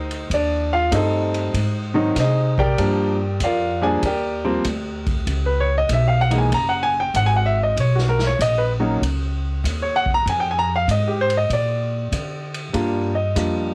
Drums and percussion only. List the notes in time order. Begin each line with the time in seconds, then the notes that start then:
0.11 ride
0.30 kick, ride
0.92 kick, hi-hat pedal, ride
1.34 ride
1.54 kick, ride
2.16 kick, snare, hi-hat pedal, ride
2.58 kick
2.78 kick, ride
3.40 kick, hi-hat pedal, ride
4.03 kick, ride
4.64 kick, hi-hat pedal, ride
5.06 kick, ride
5.27 kick, ride
5.89 kick, hi-hat pedal, ride
6.31 ride
6.52 kick, ride
7.14 kick, hi-hat pedal, ride
7.77 kick, ride
7.98 snare
8.19 snare
8.40 kick, hi-hat pedal, ride
9.02 kick, ride
9.64 kick, hi-hat pedal, ride
10.06 kick
10.26 kick, ride
10.88 kick, hi-hat pedal, ride
11.30 ride
11.50 kick, ride
12.12 kick, hi-hat pedal, ride
12.54 ride
12.74 kick, ride
13.36 kick, hi-hat pedal, ride